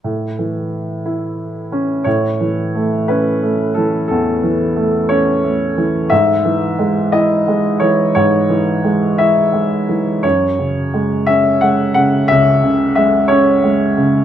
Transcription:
X:1
M:6/8
L:1/8
Q:3/8=59
K:Alyd
V:1 name="Grand piano"
z6 | c3 B2 A | A3 c2 z | e3 d2 c |
c3 e2 z | c3 e f f | e2 e c2 z |]
V:2 name="Grand piano" clef=bass
A,, E,2 E2 C | A,, E, A, C A, E, | E,, E, A, C A, E, | G,, E, G, E G, E, |
G,, E, G, E G, E, | F,, C, G, C G, C, | C,, C, G, C G, C, |]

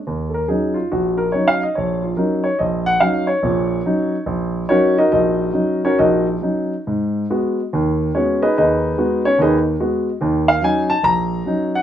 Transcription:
X:1
M:4/4
L:1/8
Q:"Swing" 1/4=142
K:Ebm
V:1 name="Grand piano"
z [=AB] _A F G B (3d f e | d F B d e g f d- | d4 z2 [DGBd] [EGBe] | [EGBe]3 [DGBd] [EGBe] z3 |
z6 [Dd] [EAce] | [EAce]3 [Dd] [EAce] z3 | z f a =a b3 g |]
V:2 name="Grand piano" clef=bass
E,,2 [G,DE] z B,,,2 [G,DE] z | B,,,2 [G,DE] z B,,,2 [G,DE] z | [B,,,B,,]2 [G,DE] z B,,,2 [G,E] z | B,,,2 [G,DE] z B,,,2 [G,DE] z |
A,,2 [A,CG] z [E,,E,]2 [A,CG] z | E,,2 [A,CG] z [E,,E,]2 [A,CG] z | [E,,E,]2 [G,DE] z B,,,2 [G,DE] z |]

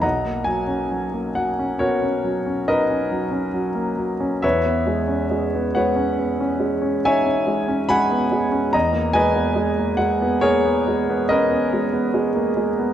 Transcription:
X:1
M:5/4
L:1/16
Q:1/4=70
K:G#m
V:1 name="Grand piano"
[dfa]2 g4 f2 [FAc]4 [ABd]8 | [Bce]6 [Bcf]6 [ceg]4 [fgb]4 | [da]2 [Bdg]4 f2 [GAc]4 [ABd]8 |]
V:2 name="Grand piano"
B,,, A, F, C F, A, F, C B, C F, C D C F, C F, A, F, C | E,, B, G, C G, B, G, C B, C G, C D C G, C G, B, G, C | E,, A, G, B, G, A, G, B, A, B, G, B, C B, G, B, G, A, G, B, |]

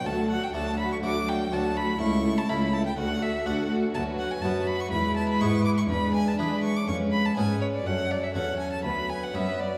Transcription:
X:1
M:4/4
L:1/16
Q:1/4=123
K:D
V:1 name="Violin"
a2 f g a2 b c' d'2 g2 a2 b2 | c'3 a b2 a g f2 e2 f2 z2 | [K:Emix] a2 f g a2 b c' b2 a b c'2 d' c' | b2 g a b2 c' d' c'2 b a g2 c d |
f2 d e f2 g a b2 g f e2 d2 |]
V:2 name="Violin section"
A2 A2 A2 A2 A2 A2 A2 A2 | A2 A2 A2 A2 A2 A2 A2 A2 | [K:Emix] B4 B4 B8 | B4 B4 B4 B4 |
A4 A4 B8 |]
V:3 name="Violin section"
F2 F2 F2 F2 F2 F2 F2 F2 | E2 E2 E2 E2 F2 F2 F2 F2 | [K:Emix] F4 F4 E8 | D4 D4 C4 C4 |
C4 C4 B,8 |]
V:4 name="Harpsichord"
D,,4 [D,,A,DF]4 [D,,A,DF]4 [D,,A,DF]4 | C,,4 [C,,A,EA]4 D,,4 [D,,DFA]4 | [K:Emix] D,,4 [F,,B,FB]4 E,,4 [G,,B,GB]4 | E,,4 [E,DGB]4 ^E,,4 [G,,CGB]4 |
F,,4 [E,,CFA]4 D,,4 [F,,B,FB]4 |]
V:5 name="Viola section" clef=bass
F,2 F,2 F,2 F,2 F,2 F,2 F,2 F,2 | A,2 A,2 A,2 A,2 A,2 A,2 A,2 A,2 | [K:Emix] F,4 F,4 G,8 | G,4 G,4 G,4 G,4 |
F,4 F,4 F,8 |]
V:6 name="Cello section" clef=bass
D,,4 D,,4 D,,4 D,,4 | C,,4 C,,4 D,,4 D,,4 | [K:Emix] D,,4 F,,4 E,,4 G,,4 | E,,4 E,4 ^E,,4 G,,4 |
F,,4 E,,4 D,,4 F,,4 |]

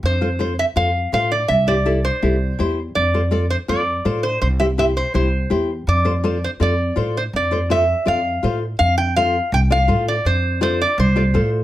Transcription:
X:1
M:4/4
L:1/8
Q:1/4=164
K:F
V:1 name="Resonator guitar played with a steel bar"
c3 e f2 f d | e d2 c4 z | d3 c d3 c | c e e c c2 z2 |
d3 c d3 c | d2 e2 f3 z | f g f2 g f2 d | c2 c d c3 z |]
V:2 name="Nylon-string guitar"
z [FAc] [FAc] z [FAc] z [FAc] z | z [EGc] [EGA] z [EGA] z [EGc] z | z [FAc] [FAd] z [FAc] z [FAc] z | z [EGc] [EGc] z [EGc] z [EGc] z |
z [FAc] [FAc] z [FAd] z [FAc] z | z [FAc] [FAc] z [FAd] z [FAc] z | z2 [FAc] z2 [FAd] [FAc] z | z2 [FAd] z2 [FAd] [FAc] z |]
V:3 name="Upright bass" clef=bass
F,,4 F,,2 A,,2 | C,,4 C,,2 E,,2 | F,,4 F,,2 A,,2 | C,,4 C,,2 E,,2 |
F,,4 F,,2 A,,2 | F,,4 F,,2 A,,2 | F,,4 C,,2 A,,2 | F,,4 C,,2 A,,2 |]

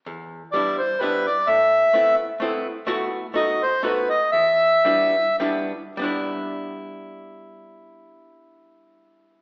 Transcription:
X:1
M:3/4
L:1/8
Q:"Swing" 1/4=118
K:Em
V:1 name="Accordion"
z2 d c B d | e3 z3 | z2 ^d c B d | e4 z2 |
z6 | z6 |]
V:2 name="Hollow-body jazz guitar"
E,,2 [G,B,DE] z [G,B,DE] z | A,,2 [A,B,CE] z [A,B,CE] z | [A,B,EF]2 [A,B,^DF] z [A,B,DF] z | E,,2 [G,B,DE] z [G,B,DE] z |
[G,B,DE]6- | [G,B,DE]6 |]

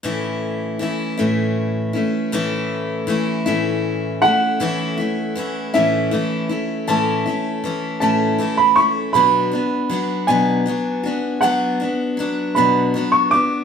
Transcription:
X:1
M:6/8
L:1/16
Q:3/8=53
K:A
V:1 name="Upright piano"
z12 | z8 z2 f2- | f6 e6 | a6 a3 b c'2 |
b6 g6 | f4 z2 b3 c' d'2 |]
V:2 name="Steel-string acoustic guitar"
[A,,E,A,CE]4 [E,A,CE]2 [A,,E,A,CE]4 [A,CE]2 | [A,,E,A,CE]4 [E,A,CE]2 [A,,E,A,CE]4 [A,CE]2 | [A,,E,A,CE]2 [A,CE]2 [E,A,CE]2 [A,,E,A,CE]2 [E,A,CE]2 [A,CE]2 | [A,,E,A,CE]2 [A,CE]2 [E,A,CE]2 [A,,E,A,CE]2 [E,A,CE]2 [A,CE]2 |
[B,,F,B,DF]2 [B,DF]2 [F,B,DF]2 [B,,F,B,DF]2 [F,B,DF]2 [B,DF]2 | [B,,F,B,DF]2 [B,DF]2 [F,B,DF]2 [B,,F,B,DF]2 [F,B,DF]2 [B,DF]2 |]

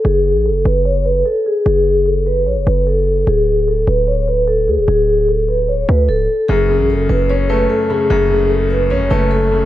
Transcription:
X:1
M:4/4
L:1/16
Q:1/4=149
K:F#m
V:1 name="Vibraphone"
G4 A2 B2 c2 B2 A2 G2 | G4 A2 B2 c2 B2 A4 | G4 A2 B2 c2 B2 A2 G2 | G4 A2 B2 c2 B2 A4 |
G4 A2 B2 c2 B2 A2 G2 | G4 A2 B2 c2 B2 A4 |]
V:2 name="Grand piano" clef=bass
z16 | z16 | z16 | z16 |
F,,2 C,6 C2 A,4 C,2 | F,,2 C,6 C2 A,4 C,2 |]
V:3 name="808-style bass" clef=bass
F,,,3 A,,,3/2 F,,,3/2 F,,,6 z4 | F,,,8 A,,, F,,, F,,,6 | D,,,6 D,,,8 D,, D,,, | D,,,8- D,,,2 D,,2 C,,,2 z2 |
F,,,3 A,,,3/2 F,,,3/2 F,,,6 z4 | F,,,8 A,,, F,,, F,,,6 |]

